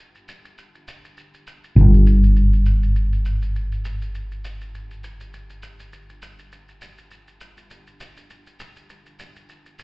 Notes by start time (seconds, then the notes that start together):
Already playing: G1
0.15 shaker
0.28 shaker
0.45 shaker
0.58 shaker
0.75 shaker
0.88 shaker
1.05 shaker
1.17 shaker
1.34 shaker
1.47 shaker
1.64 shaker
1.76 G1, shaker
1.94 shaker
2.07 shaker
2.23 shaker
2.36 shaker
2.53 shaker
2.66 shaker
2.83 shaker
2.96 shaker
3.13 shaker
3.26 shaker
3.42 shaker
3.56 shaker
3.72 shaker
3.85 shaker
4.02 shaker
4.15 shaker
4.32 shaker
4.45 shaker
4.61 shaker
4.75 shaker
4.91 shaker
5.04 shaker
5.20 shaker
5.34 shaker
5.50 shaker
5.63 shaker
5.80 shaker
5.93 shaker
6.09 shaker
6.22 shaker
6.39 shaker
6.52 shaker
6.69 shaker
6.82 shaker
6.98 shaker
7.11 shaker
7.28 shaker
7.41 shaker
7.57 shaker
7.71 shaker
7.87 shaker
8.00 shaker
8.17 shaker
8.30 shaker
8.47 shaker
8.60 shaker
8.76 shaker
8.90 shaker
9.06 shaker
9.19 shaker
9.36 shaker
9.49 shaker
9.66 shaker
9.79 shaker